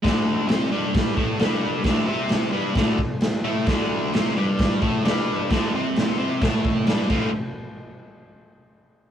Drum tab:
CC |x-x-x-x-|x-x-x-x-|x-x-x-x-|x-x-x-xx|
SD |o-o-o-o-|o-o-o-o-|o-o-o-o-|o-o-o-o-|
BD |o---oo--|o---oo--|o---oo--|o---oo-o|

CC |--------|
SD |--------|
BD |--------|